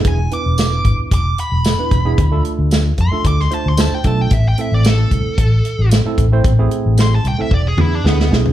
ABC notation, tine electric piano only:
X:1
M:4/4
L:1/16
Q:"Swing 16ths" 1/4=113
K:Am
V:1 name="Tine electric piano"
[B,DE^G] z [B,DEB]6 z4 z [B,DEB] z [B,DEG] | z [A,DFA]4 z2 [A,DFA]2 z [A,DFc] z [A,DFc] z [A,DFA]2 | z2 [A,CEA]6 z4 z [A,CEA] z [A,CEc] | z [A,CE^G]4 z2 [A,CEA] z2 [B,DEG] z [B,DEG] z [B,DEG]2 |]